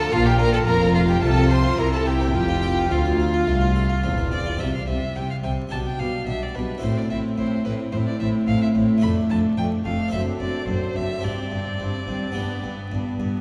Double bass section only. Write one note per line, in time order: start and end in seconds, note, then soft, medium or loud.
0.12 0.63 A#1 loud
0.67 1.21 F1 medium
1.23 1.77 C2 medium
1.78 2.34 C2 medium
2.34 2.91 F1 medium
2.91 3.46 D2 medium
3.47 4.03 C2 medium
4.04 4.60 E1 medium
4.60 4.68 C2 soft
4.88 4.96 C2 soft
5.16 5.24 C2 soft
5.44 5.52 C2 soft
5.72 5.80 B1 soft
5.99 6.07 B1 soft
6.27 6.35 B1 soft
6.55 6.63 B1 soft
6.82 6.90 A1 medium
7.10 7.18 A1 medium
7.38 7.46 A1 soft
7.65 7.73 A1 soft
7.93 8.01 A1 medium
8.20 8.28 A1 soft
8.48 8.56 A1 medium
8.75 8.83 A1 medium
9.03 9.11 F1 medium
9.30 9.38 F1 medium
9.58 9.66 F1 soft
9.85 9.93 F1 medium
10.13 10.21 F#1 medium
10.40 10.48 F#1 soft
10.68 10.76 F#1 medium
10.96 11.04 F#1 soft
11.24 11.32 G1 medium
11.52 11.60 G1 soft
11.80 11.88 G1 soft
12.08 12.16 G1 soft
12.36 12.44 G1 soft
12.64 12.72 G1 soft
12.92 13.00 G1 soft
13.20 13.28 G1 soft